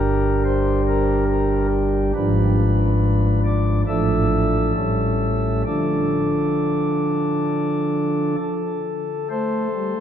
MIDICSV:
0, 0, Header, 1, 2, 480
1, 0, Start_track
1, 0, Key_signature, -1, "minor"
1, 0, Tempo, 859599
1, 1209, Time_signature, 4, 2, 24, 8
1, 2655, Tempo, 910470
1, 5055, Tempo, 870827
1, 5438, End_track
2, 0, Start_track
2, 0, Title_t, "Pipe organ"
2, 0, Program_c, 0, 19
2, 0, Note_on_c, 0, 31, 73
2, 0, Note_on_c, 0, 43, 69
2, 0, Note_on_c, 0, 55, 59
2, 0, Note_on_c, 0, 62, 54
2, 0, Note_on_c, 0, 67, 55
2, 0, Note_on_c, 0, 70, 109
2, 239, Note_off_c, 0, 70, 0
2, 250, Note_on_c, 0, 72, 102
2, 455, Note_off_c, 0, 72, 0
2, 488, Note_on_c, 0, 70, 105
2, 694, Note_off_c, 0, 70, 0
2, 723, Note_on_c, 0, 70, 93
2, 930, Note_off_c, 0, 70, 0
2, 1184, Note_off_c, 0, 31, 0
2, 1184, Note_off_c, 0, 43, 0
2, 1184, Note_off_c, 0, 55, 0
2, 1184, Note_off_c, 0, 62, 0
2, 1184, Note_off_c, 0, 67, 0
2, 1202, Note_on_c, 0, 32, 79
2, 1202, Note_on_c, 0, 53, 63
2, 1202, Note_on_c, 0, 62, 64
2, 1203, Note_on_c, 0, 44, 75
2, 1203, Note_on_c, 0, 71, 106
2, 1901, Note_off_c, 0, 71, 0
2, 1925, Note_on_c, 0, 74, 84
2, 2129, Note_off_c, 0, 74, 0
2, 2139, Note_off_c, 0, 32, 0
2, 2140, Note_off_c, 0, 44, 0
2, 2140, Note_off_c, 0, 53, 0
2, 2140, Note_off_c, 0, 62, 0
2, 2163, Note_on_c, 0, 62, 45
2, 2164, Note_on_c, 0, 33, 59
2, 2164, Note_on_c, 0, 45, 57
2, 2164, Note_on_c, 0, 69, 48
2, 2164, Note_on_c, 0, 76, 96
2, 2165, Note_on_c, 0, 53, 45
2, 2638, Note_off_c, 0, 33, 0
2, 2638, Note_off_c, 0, 45, 0
2, 2638, Note_off_c, 0, 62, 0
2, 2638, Note_off_c, 0, 69, 0
2, 2639, Note_off_c, 0, 53, 0
2, 2653, Note_on_c, 0, 33, 53
2, 2653, Note_on_c, 0, 45, 53
2, 2653, Note_on_c, 0, 61, 45
2, 2654, Note_on_c, 0, 69, 48
2, 2655, Note_on_c, 0, 55, 43
2, 3111, Note_off_c, 0, 76, 0
2, 3118, Note_off_c, 0, 33, 0
2, 3118, Note_off_c, 0, 45, 0
2, 3118, Note_off_c, 0, 61, 0
2, 3119, Note_off_c, 0, 55, 0
2, 3119, Note_off_c, 0, 69, 0
2, 3128, Note_on_c, 0, 53, 43
2, 3130, Note_on_c, 0, 74, 81
2, 3131, Note_on_c, 0, 50, 49
2, 3131, Note_on_c, 0, 62, 41
2, 3131, Note_on_c, 0, 69, 45
2, 4553, Note_off_c, 0, 53, 0
2, 4554, Note_off_c, 0, 50, 0
2, 4554, Note_off_c, 0, 62, 0
2, 4554, Note_off_c, 0, 69, 0
2, 4554, Note_off_c, 0, 74, 0
2, 4576, Note_on_c, 0, 69, 72
2, 5040, Note_off_c, 0, 69, 0
2, 5053, Note_on_c, 0, 57, 78
2, 5054, Note_on_c, 0, 69, 47
2, 5054, Note_on_c, 0, 72, 90
2, 5258, Note_off_c, 0, 57, 0
2, 5294, Note_on_c, 0, 55, 60
2, 5396, Note_off_c, 0, 55, 0
2, 5415, Note_on_c, 0, 53, 60
2, 5438, Note_off_c, 0, 53, 0
2, 5438, Note_off_c, 0, 69, 0
2, 5438, Note_off_c, 0, 72, 0
2, 5438, End_track
0, 0, End_of_file